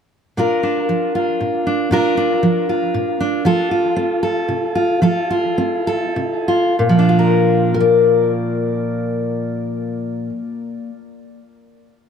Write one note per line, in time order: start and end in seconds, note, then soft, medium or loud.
0.37 0.83 A#2 soft
0.37 0.63 D4 soft
0.37 1.15 F4 soft
0.37 1.89 A#4 soft
0.63 1.65 D4 soft
0.89 1.35 F3 soft
1.15 1.92 F4 soft
1.41 1.86 A#2 soft
1.67 1.89 D4 soft
1.91 2.37 A#2 medium
1.91 2.16 D4 soft
1.91 2.69 F4 soft
1.91 3.43 A#4 soft
2.17 3.19 D4 soft
2.43 2.89 F3 soft
2.69 3.45 F4 soft
2.94 3.40 A#2 soft
3.20 3.42 D4 soft
3.45 3.91 F3 medium
3.45 3.71 F4 soft
3.45 4.22 A4 soft
3.71 4.75 F4 soft
3.96 4.43 C4 medium
4.23 4.99 A4 soft
4.49 4.97 C3 soft
4.75 5.02 F4 soft
5.02 5.52 F3 medium
5.02 5.29 F4 soft
5.02 5.86 A4 soft
5.30 6.47 F4 soft
5.58 6.10 C4 medium
5.87 6.75 A4 soft
6.16 6.72 C3 soft
6.48 6.75 F4 soft
6.79 10.29 A#2 soft
6.89 10.39 F3 soft
6.99 7.74 D4 soft
7.09 7.80 F4 soft
7.19 7.74 A#4 soft
7.74 10.89 A#4 soft
7.80 10.96 D5 soft